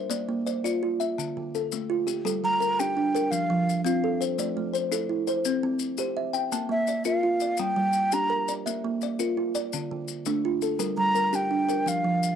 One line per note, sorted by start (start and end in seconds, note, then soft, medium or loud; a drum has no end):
0.00 0.11 A#4 medium
0.00 0.28 C5 medium
0.00 0.11 E5 medium
0.10 0.46 A#3 medium
0.10 0.46 D5 medium
0.10 maracas medium
0.29 0.65 A#3 medium
0.46 1.00 C5 medium
0.46 1.00 D5 medium
0.46 maracas soft
0.64 1.00 F4 medium
0.64 1.18 D5 medium
0.64 maracas medium
0.83 1.18 F4 medium
1.00 1.36 E5 medium
1.00 maracas soft
1.18 1.54 D3 medium
1.18 maracas medium
1.37 1.72 D3 medium
1.55 2.08 A4 medium
1.55 maracas medium
1.72 2.08 A3 medium
1.72 maracas medium
1.90 2.25 F4 medium
2.07 2.43 G4 medium
2.07 maracas medium
2.25 2.61 G3 medium
2.25 2.61 A4 medium
2.25 maracas medium
2.44 2.79 G3 medium
2.44 2.81 A#5 loud
2.60 3.13 A#4 medium
2.60 maracas medium
2.80 3.15 D4 medium
2.80 3.33 G4 medium
2.80 3.33 G5 medium
2.80 maracas medium
2.97 3.32 D4 medium
3.15 3.50 A#4 medium
3.15 3.68 A#4 medium
3.15 maracas medium
3.31 3.68 F3 medium
3.31 3.84 F5 medium
3.31 maracas medium
3.50 3.86 F3 medium
3.69 maracas medium
3.85 4.21 C4 medium
3.85 4.39 F4 medium
3.85 4.22 F5 medium
3.85 maracas medium
4.04 4.39 A4 medium
4.21 4.56 C5 medium
4.21 maracas medium
4.38 4.74 A3 medium
4.38 4.75 D5 medium
4.38 maracas medium
4.57 4.92 A3 medium
4.74 5.26 C5 medium
4.74 maracas medium
4.92 5.27 E4 medium
4.92 5.46 A4 medium
4.92 maracas medium
5.09 5.45 E4 medium
5.27 5.63 C5 medium
5.27 5.81 C5 medium
5.27 maracas medium
5.45 5.81 C4 medium
5.45 maracas medium
5.63 5.99 C4 medium
5.79 maracas medium
5.98 6.34 G4 medium
5.98 6.52 C5 medium
5.98 maracas medium
6.17 6.52 E5 medium
6.33 6.69 G5 medium
6.33 maracas medium
6.52 6.88 A#3 medium
6.52 6.88 A5 medium
6.52 maracas medium
6.69 7.05 A#3 medium
6.69 7.04 E5 medium
6.87 7.41 D5 medium
6.87 maracas medium
7.04 7.41 F4 medium
7.04 7.59 A#4 medium
7.04 7.61 F5 medium
7.04 maracas medium
7.23 7.59 F4 medium
7.40 7.77 D5 medium
7.40 maracas medium
7.57 7.95 G3 medium
7.57 8.15 G5 medium
7.57 maracas medium
7.76 8.12 G3 medium
7.93 maracas medium
8.12 8.48 D4 medium
8.12 8.66 G4 medium
8.12 8.53 A#5 loud
8.12 maracas medium
8.30 8.65 A#4 medium
8.48 8.84 D5 medium
8.48 maracas medium
8.66 9.01 A#3 medium
8.66 9.01 E5 medium
8.66 maracas medium
8.84 9.19 A#3 medium
9.01 9.54 D5 medium
9.01 maracas medium
9.19 9.55 F4 medium
9.19 9.73 A#4 medium
9.19 maracas medium
9.37 9.73 F4 medium
9.55 9.90 D5 medium
9.55 10.08 D5 medium
9.55 maracas medium
9.73 10.09 D3 medium
9.73 maracas medium
9.91 10.26 D3 medium
10.08 maracas medium
10.26 10.62 A3 medium
10.26 10.80 D4 medium
10.26 maracas medium
10.45 10.80 F4 medium
10.62 10.98 A4 medium
10.62 maracas medium
10.79 11.15 G3 medium
10.79 11.15 A#4 medium
10.79 maracas medium
10.97 11.33 G3 medium
10.97 11.37 A#5 loud
11.15 11.67 A#4 medium
11.15 maracas medium
11.33 11.69 D4 medium
11.33 11.86 G4 medium
11.33 11.90 G5 medium
11.33 maracas medium
11.51 11.86 D4 medium
11.69 12.04 A#4 medium
11.69 12.22 A#4 medium
11.69 maracas medium
11.86 12.22 F3 medium
11.86 12.35 F5 medium
11.86 maracas medium
12.04 12.35 F3 medium
12.23 maracas medium